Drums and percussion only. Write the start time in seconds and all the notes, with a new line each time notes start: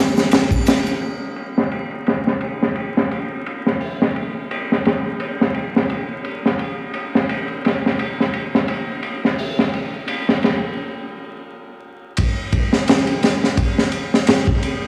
0.17 snare, shaker
0.31 snare, ride, shaker
0.51 kick, triangle, shaker
0.66 snare, ride, shaker
0.86 ride, shaker
1.02 ride
1.36 ride
1.58 snare
1.71 ride
1.91 ride
2.06 snare, ride
2.27 snare
2.41 ride
2.63 snare
2.75 ride
2.97 snare
3.11 ride
3.46 ride
3.67 snare
3.80 open hi-hat
4.02 snare
4.16 ride
4.51 ride
4.72 snare
4.85 snare, ride
5.20 ride
5.41 snare
5.54 ride
5.76 snare
5.90 ride
6.24 ride
6.46 snare
6.59 ride
6.94 ride
7.15 snare
7.29 ride
7.48 ride
7.65 snare, ride
7.86 snare
7.99 ride
8.20 snare
8.33 ride
8.55 snare
8.68 ride
9.03 ride
9.25 snare
9.38 open hi-hat
9.59 snare
9.73 ride
10.08 ride
10.29 snare
10.43 snare, ride
12.17 kick, ride
12.53 kick, ride
12.73 snare
12.88 snare, ride
13.07 ride
13.23 snare, ride
13.44 snare
13.57 kick, ride
13.78 snare
13.92 ride
14.14 snare
14.27 snare, ride
14.47 kick
14.63 ride